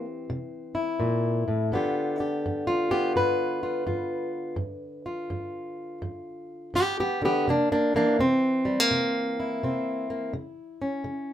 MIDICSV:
0, 0, Header, 1, 2, 480
1, 0, Start_track
1, 0, Tempo, 718563
1, 1150, Time_signature, 4, 2, 24, 8
1, 7570, End_track
2, 0, Start_track
2, 0, Title_t, "Steel-string acoustic guitar"
2, 0, Program_c, 0, 25
2, 0, Note_on_c, 0, 48, 63
2, 0, Note_on_c, 0, 52, 45
2, 0, Note_on_c, 0, 60, 46
2, 0, Note_on_c, 0, 67, 78
2, 160, Note_off_c, 0, 48, 0
2, 189, Note_off_c, 0, 67, 0
2, 199, Note_on_c, 0, 48, 65
2, 500, Note_on_c, 0, 64, 47
2, 641, Note_off_c, 0, 48, 0
2, 666, Note_on_c, 0, 46, 61
2, 980, Note_off_c, 0, 46, 0
2, 987, Note_on_c, 0, 45, 59
2, 1136, Note_off_c, 0, 52, 0
2, 1136, Note_off_c, 0, 60, 0
2, 1148, Note_off_c, 0, 64, 0
2, 1148, Note_on_c, 0, 43, 70
2, 1152, Note_off_c, 0, 45, 0
2, 1157, Note_on_c, 0, 50, 48
2, 1160, Note_on_c, 0, 59, 48
2, 1167, Note_on_c, 0, 65, 46
2, 1170, Note_on_c, 0, 67, 47
2, 1466, Note_off_c, 0, 65, 0
2, 1466, Note_on_c, 0, 62, 106
2, 1468, Note_off_c, 0, 67, 0
2, 1471, Note_on_c, 0, 67, 43
2, 1596, Note_off_c, 0, 43, 0
2, 1641, Note_on_c, 0, 43, 66
2, 1782, Note_off_c, 0, 62, 0
2, 1785, Note_on_c, 0, 65, 74
2, 1941, Note_off_c, 0, 59, 0
2, 1943, Note_off_c, 0, 67, 0
2, 1943, Note_on_c, 0, 59, 50
2, 1945, Note_on_c, 0, 67, 94
2, 2082, Note_off_c, 0, 43, 0
2, 2107, Note_off_c, 0, 67, 0
2, 2110, Note_on_c, 0, 43, 68
2, 2116, Note_on_c, 0, 71, 78
2, 2417, Note_off_c, 0, 65, 0
2, 2425, Note_on_c, 0, 65, 48
2, 2556, Note_off_c, 0, 43, 0
2, 2577, Note_off_c, 0, 65, 0
2, 2583, Note_on_c, 0, 43, 69
2, 2587, Note_on_c, 0, 65, 44
2, 3033, Note_off_c, 0, 43, 0
2, 3047, Note_off_c, 0, 65, 0
2, 3048, Note_on_c, 0, 43, 65
2, 3050, Note_off_c, 0, 59, 0
2, 3379, Note_on_c, 0, 65, 46
2, 3505, Note_off_c, 0, 43, 0
2, 3541, Note_on_c, 0, 43, 64
2, 3992, Note_off_c, 0, 43, 0
2, 4021, Note_on_c, 0, 43, 67
2, 4033, Note_off_c, 0, 71, 0
2, 4472, Note_off_c, 0, 43, 0
2, 4501, Note_on_c, 0, 43, 66
2, 4510, Note_off_c, 0, 65, 0
2, 4510, Note_on_c, 0, 59, 83
2, 4514, Note_on_c, 0, 67, 94
2, 4668, Note_off_c, 0, 59, 0
2, 4668, Note_off_c, 0, 67, 0
2, 4675, Note_on_c, 0, 59, 71
2, 4678, Note_on_c, 0, 67, 85
2, 4813, Note_off_c, 0, 50, 0
2, 4821, Note_on_c, 0, 50, 46
2, 4833, Note_off_c, 0, 59, 0
2, 4833, Note_off_c, 0, 67, 0
2, 4842, Note_on_c, 0, 59, 70
2, 4846, Note_on_c, 0, 67, 85
2, 4952, Note_off_c, 0, 43, 0
2, 4989, Note_off_c, 0, 50, 0
2, 4994, Note_on_c, 0, 48, 64
2, 4996, Note_off_c, 0, 59, 0
2, 4998, Note_off_c, 0, 67, 0
2, 5003, Note_on_c, 0, 58, 70
2, 5011, Note_on_c, 0, 62, 79
2, 5148, Note_off_c, 0, 62, 0
2, 5149, Note_off_c, 0, 58, 0
2, 5156, Note_on_c, 0, 58, 73
2, 5158, Note_on_c, 0, 62, 88
2, 5307, Note_on_c, 0, 52, 43
2, 5310, Note_off_c, 0, 58, 0
2, 5312, Note_off_c, 0, 62, 0
2, 5316, Note_on_c, 0, 58, 77
2, 5321, Note_on_c, 0, 62, 100
2, 5439, Note_off_c, 0, 48, 0
2, 5472, Note_on_c, 0, 48, 64
2, 5474, Note_off_c, 0, 58, 0
2, 5475, Note_off_c, 0, 62, 0
2, 5481, Note_on_c, 0, 60, 93
2, 5780, Note_on_c, 0, 55, 44
2, 5877, Note_off_c, 0, 55, 0
2, 5877, Note_on_c, 0, 58, 34
2, 5918, Note_off_c, 0, 48, 0
2, 5951, Note_on_c, 0, 48, 65
2, 6276, Note_on_c, 0, 64, 47
2, 6397, Note_off_c, 0, 48, 0
2, 6432, Note_off_c, 0, 60, 0
2, 6435, Note_on_c, 0, 48, 70
2, 6440, Note_on_c, 0, 60, 45
2, 6740, Note_off_c, 0, 58, 0
2, 6748, Note_on_c, 0, 58, 44
2, 6879, Note_off_c, 0, 48, 0
2, 6892, Note_off_c, 0, 52, 0
2, 6893, Note_off_c, 0, 58, 0
2, 6895, Note_off_c, 0, 60, 0
2, 6904, Note_on_c, 0, 49, 67
2, 7225, Note_on_c, 0, 61, 48
2, 7353, Note_off_c, 0, 49, 0
2, 7376, Note_on_c, 0, 49, 64
2, 7570, Note_off_c, 0, 49, 0
2, 7570, Note_off_c, 0, 61, 0
2, 7570, Note_off_c, 0, 64, 0
2, 7570, End_track
0, 0, End_of_file